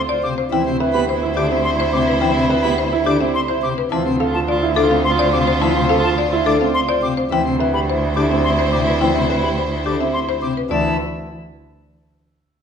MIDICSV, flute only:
0, 0, Header, 1, 2, 480
1, 0, Start_track
1, 0, Tempo, 566038
1, 438, Time_signature, 3, 2, 24, 8
1, 10704, End_track
2, 0, Start_track
2, 0, Title_t, "Flute"
2, 0, Program_c, 0, 73
2, 199, Note_on_c, 0, 86, 59
2, 249, Note_off_c, 0, 86, 0
2, 799, Note_on_c, 0, 83, 70
2, 850, Note_off_c, 0, 83, 0
2, 1158, Note_on_c, 0, 86, 63
2, 1209, Note_off_c, 0, 86, 0
2, 1394, Note_on_c, 0, 84, 79
2, 1445, Note_off_c, 0, 84, 0
2, 1636, Note_on_c, 0, 86, 63
2, 1687, Note_off_c, 0, 86, 0
2, 2236, Note_on_c, 0, 83, 76
2, 2287, Note_off_c, 0, 83, 0
2, 2595, Note_on_c, 0, 86, 71
2, 2646, Note_off_c, 0, 86, 0
2, 2838, Note_on_c, 0, 84, 83
2, 2889, Note_off_c, 0, 84, 0
2, 3078, Note_on_c, 0, 86, 63
2, 3128, Note_off_c, 0, 86, 0
2, 3680, Note_on_c, 0, 81, 76
2, 3731, Note_off_c, 0, 81, 0
2, 4037, Note_on_c, 0, 86, 74
2, 4087, Note_off_c, 0, 86, 0
2, 4280, Note_on_c, 0, 84, 91
2, 4331, Note_off_c, 0, 84, 0
2, 4517, Note_on_c, 0, 86, 71
2, 4568, Note_off_c, 0, 86, 0
2, 5116, Note_on_c, 0, 81, 80
2, 5167, Note_off_c, 0, 81, 0
2, 5481, Note_on_c, 0, 86, 75
2, 5532, Note_off_c, 0, 86, 0
2, 5719, Note_on_c, 0, 84, 95
2, 5769, Note_off_c, 0, 84, 0
2, 5957, Note_on_c, 0, 86, 69
2, 6008, Note_off_c, 0, 86, 0
2, 6561, Note_on_c, 0, 83, 77
2, 6612, Note_off_c, 0, 83, 0
2, 6920, Note_on_c, 0, 86, 66
2, 6971, Note_off_c, 0, 86, 0
2, 7158, Note_on_c, 0, 84, 75
2, 7209, Note_off_c, 0, 84, 0
2, 7399, Note_on_c, 0, 86, 61
2, 7449, Note_off_c, 0, 86, 0
2, 7995, Note_on_c, 0, 83, 62
2, 8046, Note_off_c, 0, 83, 0
2, 8361, Note_on_c, 0, 86, 58
2, 8412, Note_off_c, 0, 86, 0
2, 8595, Note_on_c, 0, 84, 71
2, 8646, Note_off_c, 0, 84, 0
2, 8836, Note_on_c, 0, 86, 52
2, 8887, Note_off_c, 0, 86, 0
2, 9080, Note_on_c, 0, 81, 71
2, 9302, Note_off_c, 0, 81, 0
2, 10704, End_track
0, 0, End_of_file